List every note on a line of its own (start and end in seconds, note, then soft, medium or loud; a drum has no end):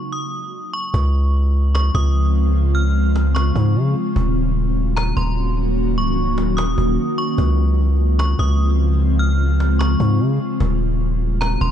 0.00 0.10 C#6 medium
0.12 0.70 D#6 medium
0.73 0.93 C#6 medium
0.94 1.91 C#2 loud
0.94 4.13 C#3 medium
0.94 4.13 F3 medium
0.94 4.13 G#3 medium
0.94 4.13 C4 medium
0.94 4.13 F4 medium
0.94 cajon bass loud
1.34 cajon slap soft
1.75 1.94 C#6 medium
1.75 cajon slap loud
1.95 3.52 C#2 loud
1.95 2.14 D#6 medium
1.95 cajon bass loud
2.15 cajon slap soft
2.35 cajon slap soft
2.55 cajon slap soft
2.75 3.32 F6 medium
2.95 cajon slap soft
3.16 cajon slap medium
3.35 4.12 C#6 medium
3.35 cajon slap loud
3.56 3.77 G#2 loud
3.56 cajon bass medium
3.76 3.95 C#3 loud
3.76 cajon slap soft
3.96 cajon slap soft
4.16 5.13 D#1 loud
4.16 7.35 D#3 medium
4.16 7.35 F#3 medium
4.16 7.35 A#3 medium
4.16 7.35 C#4 medium
4.16 7.35 F#4 medium
4.16 cajon bass loud
4.56 cajon slap soft
4.97 5.16 A#5 medium
4.97 cajon slap loud
5.17 5.99 D#1 loud
5.17 5.36 C6 medium
5.17 cajon bass loud
5.37 cajon slap soft
5.57 cajon slap soft
5.77 cajon slap soft
5.97 6.39 C#1 loud
5.97 6.54 C#6 medium
6.17 cajon slap soft
6.38 6.76 D#1 loud
6.38 cajon slap loud
6.57 7.14 D#6 medium
6.57 cajon slap loud
6.78 6.98 D#1 loud
6.78 cajon bass medium
7.18 7.37 C#6 medium
7.38 8.35 C#2 loud
7.38 10.57 C#3 medium
7.38 10.57 F3 medium
7.38 10.57 G#3 medium
7.38 10.57 C4 medium
7.38 10.57 F4 medium
7.38 cajon bass loud
7.78 cajon slap soft
8.19 8.38 C#6 medium
8.19 cajon slap loud
8.39 9.96 C#2 loud
8.39 8.58 D#6 medium
8.39 cajon bass medium
8.59 cajon slap soft
8.79 cajon slap soft
9.00 cajon slap soft
9.19 9.76 F6 medium
9.40 cajon slap soft
9.60 cajon slap medium
9.79 10.56 C#6 medium
9.79 cajon slap loud
10.00 10.21 G#2 loud
10.00 cajon bass medium
10.20 10.39 C#3 loud
10.20 cajon slap soft
10.40 cajon slap soft
10.60 11.57 D#1 loud
10.60 11.71 D#3 medium
10.60 11.71 F#3 medium
10.60 11.71 A#3 medium
10.60 11.71 C#4 medium
10.60 11.71 F#4 medium
10.60 cajon bass loud
11.00 cajon slap soft
11.41 11.60 A#5 medium
11.41 cajon slap loud
11.61 11.71 D#1 loud
11.61 11.71 C6 medium
11.61 cajon bass medium